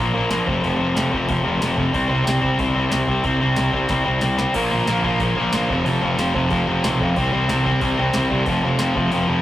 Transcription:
0.00 overdriven electric guitar A#2 F3 A#3 D4
0.14 picked electric bass A#1, distorted electric guitar A#2, overdriven electric guitar A#3 D4
0.18 overdriven electric guitar A#2 F3
0.30 picked electric bass A#1, overdriven electric guitar A#2 F3 A#3 D4, snare, open hi-hat
0.47 picked electric bass F1, overdriven electric guitar F2 C3 F3 A3 C4, kick
0.64 picked electric bass F1, overdriven electric guitar F2 C3 F3 A3 C4, open hi-hat
0.81 picked electric bass F1, overdriven electric guitar F2 C3 F3 A3 C4
0.96 picked electric bass F1, overdriven electric guitar F2 C3 F3 A3 C4, snare, open hi-hat
1.13 picked electric bass F1, overdriven electric guitar F2 C3 F3 A3 C4, kick
1.29 picked electric bass F1, overdriven electric guitar F2 C3 F3 A3 C4, kick, open hi-hat
1.46 picked electric bass F1, overdriven electric guitar F2 C3 F3 A3 C4
1.62 picked electric bass F1, overdriven electric guitar F2 C3 F3 A3 C4, snare, open hi-hat
1.78 overdriven electric guitar F2 C3 F3 A3 C4, kick
1.94 picked electric bass C2, overdriven electric guitar C3 G3 C4 E4, kick, open hi-hat
2.09 picked electric bass C2, distorted electric guitar G3 C4, overdriven electric guitar E4
2.13 overdriven electric guitar C3 G3 C4
2.27 picked electric bass C2, overdriven electric guitar C3 G3 C4 E4, snare, open hi-hat
2.43 overdriven electric guitar C3 G3 C4 E4, kick
2.59 picked electric bass C2, overdriven electric guitar C3 G3 C4 E4, kick, open hi-hat
2.76 picked electric bass C2, overdriven electric guitar C3 G3 C4 E4
2.91 picked electric bass C2, overdriven electric guitar C3 G3 C4 E4, snare, open hi-hat
3.08 picked electric bass C2, overdriven electric guitar C3 G3 C4 E4, kick
3.24 picked electric bass C2, overdriven electric guitar C3 G3 C4 E4, kick, open hi-hat
3.41 picked electric bass C2, overdriven electric guitar C3 G3 C4 E4
3.56 picked electric bass C2, overdriven electric guitar C3 G3 C4, snare, open hi-hat
3.60 overdriven electric guitar E4
3.73 picked electric bass C2, overdriven electric guitar C3 G3 C4 E4, kick
3.89 picked electric bass C2, overdriven electric guitar C3 G3 C4 E4, kick, snare, open hi-hat
4.05 picked electric bass C2, overdriven electric guitar C3 G3 C4 E4
4.21 picked electric bass C2, overdriven electric guitar C3 G3 C4 E4, snare, open hi-hat
4.38 overdriven electric guitar C3 G3 C4 E4, snare
4.54 picked electric bass A#1, overdriven electric guitar A#2 D3 F3 A#3 F4, kick, crash
4.71 picked electric bass A#1, overdriven electric guitar A#2 D3 F3 A#3 F4
4.86 picked electric bass A#1, overdriven electric guitar A#2 D3 F3, snare, open hi-hat
4.91 overdriven electric guitar A#3 F4
5.04 overdriven electric guitar A#2 D3 F3 A#3 F4, kick
5.20 picked electric bass A#1, overdriven electric guitar A#2 D3 F3 A#3 F4, kick, open hi-hat
5.35 picked electric bass A#1, distorted electric guitar A#2 F3, overdriven electric guitar A#3 F4
5.40 overdriven electric guitar A#2 D3 F3
5.52 picked electric bass A#1, overdriven electric guitar A#2 D3 F3 A#3 F4, snare, open hi-hat
5.69 picked electric bass F1, distorted electric guitar F2 C3, overdriven electric guitar F3 A3 C4 F4, kick
5.85 picked electric bass F1, distorted electric guitar F2 C3, overdriven electric guitar F3 A3 C4 F4, open hi-hat
6.02 picked electric bass F1, distorted electric guitar F2 C3, overdriven electric guitar F3 A3 C4 F4
6.18 picked electric bass F1, distorted electric guitar F2 C3, overdriven electric guitar F3 A3 C4 F4, snare, open hi-hat
6.34 picked electric bass F1, distorted electric guitar F2 C3, overdriven electric guitar F3 A3 C4 F4, kick
6.50 picked electric bass F1, distorted electric guitar F2 C3, overdriven electric guitar F3 A3 C4 F4, kick, open hi-hat
6.65 picked electric bass F1, distorted electric guitar F2 C3, overdriven electric guitar F3 A3 C4 F4
6.83 picked electric bass B1, distorted electric guitar F2 C3, overdriven electric guitar F3 A3 C4 F4, snare, open hi-hat
7.00 distorted electric guitar F2 C3, overdriven electric guitar F3 A3 C4 F4, kick
7.16 picked electric bass C2, overdriven electric guitar C3 E3 G3 C4 E4, kick, open hi-hat
7.33 picked electric bass C2, overdriven electric guitar C3 E3 G3 C4 E4
7.48 picked electric bass C2, overdriven electric guitar C3 E3 G3 C4 E4, snare, open hi-hat
7.66 overdriven electric guitar C3 E3 G3 C4 E4, kick
7.81 picked electric bass C2, overdriven electric guitar C3 E3 G3 C4 E4, kick, open hi-hat
7.98 picked electric bass C2, overdriven electric guitar C3 E3 G3 C4 E4
8.13 picked electric bass C2, overdriven electric guitar C3 E3 G3 C4 E4, snare, open hi-hat
8.29 picked electric bass G2, overdriven electric guitar C3 E3 G3 C4 E4, kick
8.45 picked electric bass F1, distorted electric guitar F2 C3, overdriven electric guitar F3 A3 C4 F4, kick, open hi-hat
8.63 picked electric bass F1, distorted electric guitar F2 C3, overdriven electric guitar F3 A3 C4 F4
8.79 picked electric bass F1, distorted electric guitar F2 C3, overdriven electric guitar F3 A3 C4 F4, snare, open hi-hat
8.95 picked electric bass F1, distorted electric guitar F2 C3, overdriven electric guitar F3 A3 C4 F4, kick
9.11 picked electric bass F1, distorted electric guitar F2 C3, overdriven electric guitar F3 A3 C4 F4, open hi-hat
9.28 picked electric bass F1, distorted electric guitar F2 C3, overdriven electric guitar F3 A3 C4 F4

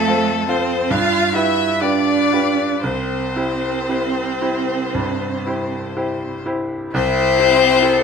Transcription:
Already playing: grand piano F2 F4 A4 C5, cello A3, violin A4
0.07 grand piano F4 A4 C5
0.48 cello C4, grand piano F4 A4 C5, violin C5
0.91 grand piano G2, cello F4, violin F5
1.33 cello E4, grand piano F4 G4 B4, violin E5
1.80 cello D4, grand piano F4 G4 B4, violin D5
2.32 grand piano F4 G4 B4
2.83 grand piano C2, cello C4, violin C5
3.36 grand piano E4 G4 C5
3.89 grand piano E4 G4 C5
4.42 grand piano E4 G4 C5
4.95 grand piano G2
5.46 grand piano E4 G4 C5
5.97 grand piano E4 G4 C5
6.46 grand piano E4 G4 C5
6.93 grand piano C2, violin C4 C5, cello E4
7.39 grand piano E4 G4 C5
7.82 grand piano E4 G4 C5, cello A4

